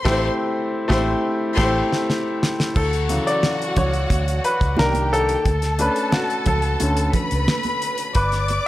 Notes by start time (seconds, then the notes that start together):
0.03 A1 A3 E4 G4 C5 C6, kick, snare, crash
0.11 C4
0.88 A1 A3 E4 G4 C5 C6, kick, snare
0.95 C4
1.56 A1 A3 E4 G4 C5 C6, kick, snare, crash
1.64 C4
1.92 snare
2.10 snare
2.43 snare
2.60 snare
2.76 D2 F#4 A4 F#5, kick, crash
2.93 closed hi-hat
3.09 C#3 E3 F#3, closed hi-hat, muted conga
3.27 D5, closed hi-hat
3.43 snare, high conga
3.62 closed hi-hat
3.76 C#2 C#5, kick, closed hi-hat, low conga
3.93 closed hi-hat
4.10 D2, kick, closed hi-hat, muted conga
4.28 closed hi-hat
4.44 B4, closed hi-hat
4.61 C#2, kick, closed hi-hat
4.77 C2 D#3 A#3 D4 G4 A#4 G5, snare, high conga
4.94 closed hi-hat, high conga
5.13 A4, closed hi-hat
5.29 closed hi-hat
5.45 D2 A4 A5, kick, closed hi-hat
5.62 snare, closed hi-hat
5.79 A3 C#4 D4 B4, closed hi-hat, muted conga
5.96 closed hi-hat
6.12 F#4, snare, high conga
6.30 closed hi-hat
6.46 C#2 A4, kick, closed hi-hat, low conga
6.62 closed hi-hat
6.80 D2 D3 A3 C#4, closed hi-hat, muted conga
6.97 closed hi-hat
7.13 B4 B5, kick, closed hi-hat, low conga
7.31 C#2, closed hi-hat
7.47 snare, high conga
7.63 closed hi-hat, high conga
7.82 closed hi-hat
7.98 closed hi-hat
8.15 G1 B4 D5 D6, kick, closed hi-hat
8.32 snare, closed hi-hat
8.48 closed hi-hat, muted conga